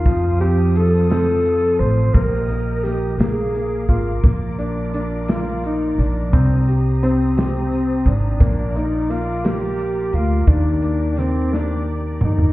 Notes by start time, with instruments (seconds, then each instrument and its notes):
Already playing: tenor saxophone F4
0.05 upright bass F2, grand piano F3, string section F4 C5 A5 D#6, kick, closed hi-hat
0.40 grand piano C4, tenor saxophone G4, closed hi-hat
0.76 grand piano F3, tenor saxophone A4, closed hi-hat
1.10 grand piano C4, tenor saxophone A4, snare, closed hi-hat
1.45 closed hi-hat
1.79 upright bass A1, tenor saxophone C5, closed hi-hat
2.13 upright bass A#1, grand piano A#3, string section G4 D#5 A#5 D#6, tenor saxophone A#4, kick, closed hi-hat
2.49 grand piano A#3, closed hi-hat
2.83 grand piano A#3, tenor saxophone G4, snare, closed hi-hat
3.18 upright bass A#1, grand piano A#3, tenor saxophone G#4, string section G#4 F5 A#5 D6, snare, closed hi-hat
3.54 grand piano A#3, closed hi-hat
3.88 upright bass G#1, grand piano A#3, tenor saxophone F4, kick, closed hi-hat
4.24 upright bass A#1, grand piano A#3, string section F4 D5, kick, closed hi-hat
4.59 grand piano A#3, tenor saxophone D4, closed hi-hat
4.94 grand piano A#3, tenor saxophone D4, closed hi-hat
5.28 grand piano A#3, tenor saxophone F4, snare, closed hi-hat
5.64 tenor saxophone D#4, closed hi-hat
5.98 upright bass A#1, tenor saxophone D4, closed hi-hat
6.33 upright bass C2, grand piano C4, string section G4 C5 D#6, kick, closed hi-hat
6.68 grand piano G4, closed hi-hat
7.03 grand piano C4, tenor saxophone C4, closed hi-hat
7.37 grand piano G4, snare, closed hi-hat
7.72 closed hi-hat
8.06 upright bass G#1, tenor saxophone D4, kick, closed hi-hat
8.40 upright bass A#1, grand piano A#3, string section F4 D5 D6, kick, closed hi-hat
8.75 grand piano A#3, tenor saxophone D#4, closed hi-hat
9.10 grand piano A#3, tenor saxophone F4, closed hi-hat
9.44 grand piano A#3, tenor saxophone G4, snare, closed hi-hat
9.79 closed hi-hat
10.13 upright bass D2, tenor saxophone F4, closed hi-hat
10.46 upright bass D#2, grand piano D#3, tenor saxophone D4, string section G4 D5 D6, kick, closed hi-hat
10.82 grand piano A#3, closed hi-hat
11.17 grand piano D#3, tenor saxophone C4, snare, closed hi-hat
11.52 grand piano A#3, tenor saxophone D4, snare
12.21 upright bass G1, tenor saxophone D#4, mid tom
12.38 floor tom